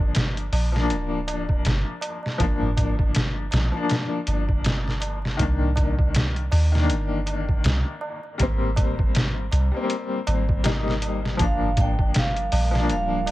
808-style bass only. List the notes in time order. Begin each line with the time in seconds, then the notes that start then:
Already playing: G1
0.52 A#1
0.90 D1
1.65 G1
2.40 G1
3.53 A#1
4.28 G1
5.39 C2
6.52 D#2
6.90 G1
7.65 C2
8.40 G#1
9.52 C2
10.28 G#1
11.40 G1
12.52 A#1
12.90 D1